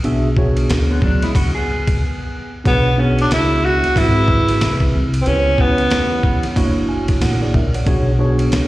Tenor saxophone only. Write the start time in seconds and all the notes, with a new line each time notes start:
2.67 B3
3.00 C#4
3.21 D4
3.33 E4
3.65 F#4
3.98 E4
5.22 C4
5.27 C#4
5.60 B3